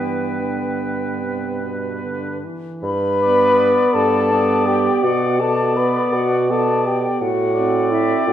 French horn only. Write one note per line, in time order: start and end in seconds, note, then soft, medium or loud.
0.00 0.42 E3 soft
0.41 1.23 D3 soft
1.21 1.64 C3 soft
1.63 2.03 B2 soft
2.04 2.46 D3 soft
2.45 2.84 E3 soft
2.85 3.96 B4 loud
3.95 4.69 A4 loud
4.68 5.05 G4 medium
5.04 5.42 F#4 medium
5.40 5.79 A4 medium
5.77 6.15 B4 medium
6.14 6.52 F#4 medium
6.51 6.88 A4 medium
6.86 7.21 G4 medium
7.21 7.93 F#4 medium
7.91 8.29 E4 medium
8.27 8.33 F#4 medium